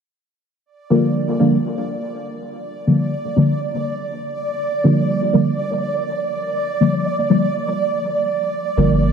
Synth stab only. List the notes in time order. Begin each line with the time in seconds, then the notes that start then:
0.90 D3 F3 G3 A#3
1.39 D3 F3 G3 A#3
2.87 D3 F3 G3 A#3
3.36 D3 F3 G3 A#3
4.84 D3 F3 G3 A#3
5.33 D3 F3 G3 A#3
6.80 D3 F3 G3 A#3
7.30 D3 F3 G3 A#3
8.77 D3 F3 G3 A#3